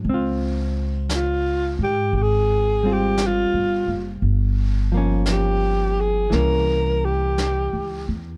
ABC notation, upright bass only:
X:1
M:4/4
L:1/8
Q:"Swing" 1/4=58
K:Dblyd
V:1 name="Upright bass" clef=bass
D,,3 A,, A,,,2- (3A,,, G,,, _G,,, | G,,,4 C,,2- (3C,, D,, =E,, |]